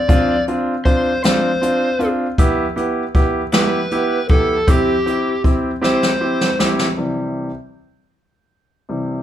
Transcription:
Already playing: D5
0.08 C4 D4 F4, kick, closed hi-hat
0.48 C4 D4 F4, closed hi-hat
0.85 C4 D4 F4 C5, kick, closed hi-hat
1.23 C4 D4 F4 C5, snare, closed hi-hat
1.62 C4 D4 F4, closed hi-hat
1.99 C4 D4 F4, closed hi-hat
2.38 B3 E4 G4, kick, closed hi-hat
2.76 B3 E4 G4, closed hi-hat
3.15 B3 E4 G4, kick, closed hi-hat
3.52 B3 E4 G4 B4, snare, closed hi-hat
3.91 B3 E4 G4, closed hi-hat
4.29 B3 E4 G4 A4, kick, closed hi-hat
4.67 C4 E4 G4, kick, closed hi-hat
5.06 C4 E4 G4, closed hi-hat
5.44 C4 E4 G4, kick, closed hi-hat
5.81 C4 E4 G4 C5, snare
6.03 snare
6.21 C4 E4 G4
6.41 snare
6.59 C4 E4 G4, snare
6.79 snare
6.97 C3 E3 G3
8.89 C3 E3 G3

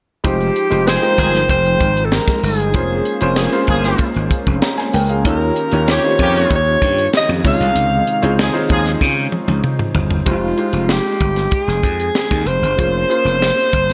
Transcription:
0.24 F1 F3 G#3 D#4 F4 G4 C5 G5, kick, closed hi-hat, shaker
0.41 closed hi-hat, shaker
0.56 closed hi-hat, shaker
0.70 F1 G#3 D#4 F4 G4 C5, closed hi-hat, shaker
0.87 D#3 C4 G#4 C5, snare, closed hi-hat, shaker
1.02 G#3 D#4 F4 A#4 G5, closed hi-hat, shaker
1.10 C5
1.18 G1 D#3 C4 G#4, kick, closed hi-hat
1.34 snare, closed hi-hat, shaker
1.49 F1 C5, kick, closed hi-hat, shaker
1.65 closed hi-hat, shaker
1.80 G#1, kick, closed hi-hat, shaker
1.97 closed hi-hat, shaker
2.05 A4
2.12 A#4, snare, closed hi-hat, shaker
2.28 kick, snare, closed hi-hat, shaker
2.43 G1 G#4, open hi-hat
2.59 closed hi-hat, shaker
2.74 F1 G#3 A#3 C#4 F4 G#4 C5, kick, closed hi-hat, shaker
2.90 shaker
3.05 closed hi-hat, shaker
3.21 F1 A#3 C#4 F4 G#4 C5, closed hi-hat, shaker
3.36 F3 C#4 G#4, snare, closed hi-hat, shaker
3.52 A#3 C#4 F4 G#4 C5, closed hi-hat, shaker
3.67 G1 F3 C#4 G#4, kick, closed hi-hat
3.84 snare, closed hi-hat, shaker
3.98 kick, closed hi-hat, shaker
4.14 G#1, closed hi-hat, shaker
4.31 kick, closed hi-hat, shaker
4.47 F1, kick, closed hi-hat, shaker
4.62 C#5 A#5, snare, closed hi-hat, shaker
4.78 C5 G#5, snare, closed hi-hat, shaker
4.93 C#2 A#4 G5, open hi-hat
5.09 G#4 F5, closed hi-hat, shaker
5.25 D#2 D#3 A#3 D#4 F4 G4 A#4 C#5, kick, closed hi-hat, shaker
5.40 shaker
5.56 closed hi-hat, shaker
5.72 D#2 A#3 D#4 F4 G4 C#5, closed hi-hat, shaker
5.88 C#3 A#3 G4 C#5, snare, closed hi-hat, shaker
6.03 A#3 D#4 F4 G4 C5, closed hi-hat, shaker
6.11 C#5
6.19 F2 C#3 A#3 G4, kick, closed hi-hat
6.34 closed hi-hat, shaker
6.50 D#2, kick, closed hi-hat, shaker
6.55 C#5
6.66 shaker
6.82 G2, kick, closed hi-hat, shaker
6.97 closed hi-hat, shaker
7.13 D#5, snare, closed hi-hat, shaker
7.29 F2, shaker
7.44 C#2 C3 D#3 G#3 D#4 F4 G#4 C#5 F5, kick, open hi-hat
7.60 C2, closed hi-hat, shaker
7.75 C#2, closed hi-hat, shaker
7.92 shaker
8.07 closed hi-hat, shaker
8.22 C#2 C4 D#4 F4 G#4 C#5, closed hi-hat, shaker
8.39 F3 D#4 G#4, snare, closed hi-hat, shaker
8.53 D#4 F4 G#4 C5 C#5, closed hi-hat, shaker
8.69 D#2 F3 D#4 G#4, kick, closed hi-hat
8.86 snare, closed hi-hat, shaker
9.01 C#3, kick, snare, shaker
9.17 shaker
9.32 high tom, shaker
9.48 C#2, high tom, shaker
9.64 mid tom, shaker
9.79 mid tom, shaker
9.95 G1, floor tom
10.11 floor tom, shaker
10.26 F1 G#3 D#4 F4 G4 C5, kick, closed hi-hat
10.31 F4
10.57 G#3 D#4 F4 G4 C5, closed hi-hat
10.73 F1, closed hi-hat
10.89 G4, snare
11.20 G1, kick, closed hi-hat
11.36 snare, closed hi-hat
11.51 G#4, kick, closed hi-hat
11.68 F1, snare
11.83 F2, kick, closed hi-hat
12.00 closed hi-hat
12.15 G#4, snare
12.31 D#2, kick
12.46 F1 C5, closed hi-hat
12.62 G1, closed hi-hat
12.77 F1 A#3 C#4 F4 G#4 C5, kick, closed hi-hat
13.09 A#3 C#4 F4 G#4 C5, closed hi-hat
13.25 F1, closed hi-hat
13.42 snare
13.58 closed hi-hat
13.73 G1, kick, closed hi-hat
13.90 snare, closed hi-hat

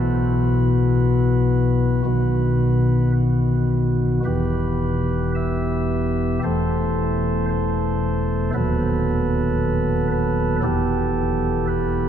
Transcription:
Already playing: B1 B2 E3 B3 F#4 B4
2.05 B1 B2 D#3 B3 F#4
4.25 E1 E2 E3 B3 G4 B4
5.35 E5
6.43 E1 E2 E3 A3 A4 C5
7.49 C5
8.54 D#1 D#2 F#3 B3 A4 B4
10.11 B4
10.63 E1 E2 E3 B3 G4 A4
11.68 B4

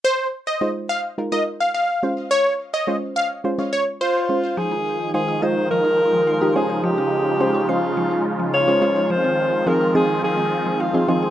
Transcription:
0.04 C5
0.47 D#5
0.61 G#3 D#4 F4 C5
0.89 F5
1.18 G#3 D#4 F4 A#4
1.32 G#3 D#4 F4 A#4 D#5
1.60 F5
1.74 F5
2.03 G#3 C#4 F4 C5
2.31 C#5
2.74 D#5
2.87 G#3 C#4 F4 C5
3.16 F5
3.44 G#3 C#4 F4 C5
3.58 G#3 C#4 F4 C#5
3.73 C#5
4.01 F4 C5
4.29 G#3 C#4 F4 C5
4.57 D#3 F3 G#3 D#4 F4 G#4
4.71 D#4
5.14 G#3 D#4 F4 G#4 C5 F5
5.28 D#6
5.42 G#3 D#4 F4 C5 D#5 G#6
5.71 F3 A#4
5.85 D#4
6.13 F3
6.27 F5
6.41 G#3 D#4 F4 G4 D#6
6.55 C#3 G#3 C#4 F4 G#4 C5 F5
6.69 C5
6.84 F3 G4
6.98 C#4
7.40 G#3 C#4 F4 C5 F5
7.54 C#6
7.68 G#3 C#4 F4 C5 C7
7.97 F3
8.11 C#4
8.40 F3
8.54 C#5 F5
8.68 G#3 C#4 F4 C5 C#6
8.81 G#3 C#4 F4 C5 F5
8.96 C5
9.10 D#3 F3 C4 C5
9.24 C4
9.66 F3 C4 D#4 G#4 A#4 F5
9.81 C6
9.95 F3 C4 D#4 G#4 G#6
10.23 F3 G#4
10.38 C4
10.66 F3
10.80 F4 F5
10.94 F3 C4 D#4 G#4 C6
11.08 F3 C4 D#4 F4 G#4 F5
11.23 G#4

